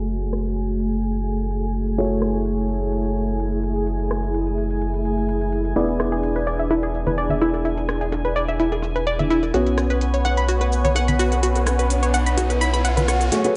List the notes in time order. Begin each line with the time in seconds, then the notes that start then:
Already playing: F#1 A3 F#4 G#4 C#5 G#5
0.09 closed hi-hat, shaker
0.22 closed hi-hat
0.33 cross-stick, closed hi-hat, shaker
0.45 closed hi-hat
0.57 closed hi-hat
0.69 closed hi-hat
0.80 closed hi-hat, shaker
0.93 closed hi-hat
1.04 closed hi-hat, shaker
1.16 closed hi-hat
1.28 shaker
1.40 closed hi-hat, shaker
1.51 closed hi-hat, shaker
1.63 closed hi-hat, shaker
1.75 closed hi-hat, shaker
1.87 closed hi-hat, shaker
1.98 A3 E4 F#4 G#4 C#5, closed hi-hat, shaker
2.11 closed hi-hat
2.22 cross-stick, closed hi-hat, shaker
2.34 closed hi-hat, shaker
2.45 closed hi-hat, shaker
2.58 closed hi-hat, shaker
2.69 closed hi-hat, shaker
2.82 closed hi-hat, shaker
2.93 closed hi-hat, shaker
3.05 closed hi-hat
3.17 shaker
3.29 closed hi-hat, shaker
3.40 closed hi-hat, shaker
3.52 closed hi-hat, shaker
3.64 closed hi-hat, shaker
3.76 closed hi-hat, shaker
3.87 closed hi-hat, shaker
4.00 closed hi-hat
4.11 cross-stick, closed hi-hat, shaker
4.23 closed hi-hat, shaker
4.34 closed hi-hat, shaker
4.47 closed hi-hat, shaker
4.58 closed hi-hat, shaker
4.71 closed hi-hat, shaker
4.82 closed hi-hat, shaker
4.94 closed hi-hat
5.05 closed hi-hat, shaker
5.18 closed hi-hat, shaker
5.29 closed hi-hat, shaker
5.41 closed hi-hat, shaker
5.53 closed hi-hat, shaker
5.65 closed hi-hat, shaker
5.76 E1 B3 D4 E4 G#4 D5, closed hi-hat, shaker
5.89 closed hi-hat
6.00 cross-stick, closed hi-hat, high bongo, shaker
6.12 G#4, closed hi-hat, shaker
6.23 closed hi-hat, shaker
6.36 B4, closed hi-hat, high bongo, shaker
6.47 D5, closed hi-hat, shaker
6.59 E5, closed hi-hat, shaker
6.70 E4, closed hi-hat, high bongo, shaker
6.83 G#4, closed hi-hat
6.94 shaker
7.07 B4, closed hi-hat, high bongo, high conga, shaker
7.18 D5, closed hi-hat, shaker
7.30 E5, closed hi-hat, high conga, shaker
7.41 E4, closed hi-hat, high bongo, shaker
7.54 closed hi-hat, cowbell, shaker
7.65 E4, closed hi-hat, shaker
7.78 closed hi-hat, high bongo
7.89 cross-stick, closed hi-hat, shaker
8.01 G#4, closed hi-hat, shaker
8.12 closed hi-hat, high bongo, shaker
8.25 B4, closed hi-hat, shaker
8.36 D5, closed hi-hat, shaker
8.48 E5, closed hi-hat, high bongo, shaker
8.60 E4, closed hi-hat, shaker
8.72 G#4, closed hi-hat, cowbell
8.82 high bongo, shaker
8.96 B4, closed hi-hat, shaker
9.07 D5, closed hi-hat, shaker
9.19 E5, closed hi-hat, high bongo, high conga, shaker
9.30 E4, closed hi-hat, shaker
9.43 closed hi-hat, cowbell, shaker
9.54 B1 B3 C#4 F#4 B4 C#5 F#5, closed hi-hat, high bongo, riser, shaker
9.67 closed hi-hat
9.78 cross-stick, closed hi-hat, shaker
9.90 B4, closed hi-hat, high bongo, shaker
10.01 closed hi-hat, shaker
10.14 C#5, closed hi-hat, shaker
10.25 F#5, closed hi-hat, high bongo, shaker
10.37 B5, closed hi-hat, shaker
10.49 F#4, closed hi-hat, shaker
10.61 B4, closed hi-hat, high bongo
10.72 shaker
10.85 C#5, closed hi-hat, high conga, shaker
10.95 F#5, closed hi-hat, high bongo, shaker
11.08 B5, closed hi-hat, high conga, shaker
11.19 F#4, closed hi-hat, shaker
11.32 closed hi-hat, cowbell, high bongo, shaker
11.43 F#4, closed hi-hat, shaker
11.56 closed hi-hat, cowbell, shaker
11.66 cross-stick, closed hi-hat, high bongo, shaker
11.79 B4, closed hi-hat, shaker
11.90 closed hi-hat, shaker
12.03 C#5, closed hi-hat, high bongo, shaker
12.14 F#5, closed hi-hat, shaker
12.26 B5, closed hi-hat, shaker
12.37 F#4, closed hi-hat, high bongo, shaker
12.50 B4, closed hi-hat, cowbell, shaker
12.61 B5, closed hi-hat, shaker
12.74 B5, closed hi-hat, high bongo, shaker
12.85 F#5, closed hi-hat, shaker
12.97 B4, closed hi-hat, high conga, shaker
13.08 F#5 C#6, cross-stick, closed hi-hat, high bongo, shaker
13.20 closed hi-hat, cowbell, shaker
13.32 F#3 A3 F#4 G#4 C#5 G#5, snare, closed hi-hat, riser, shaker
13.44 A3 F#4 G#4 B4, closed hi-hat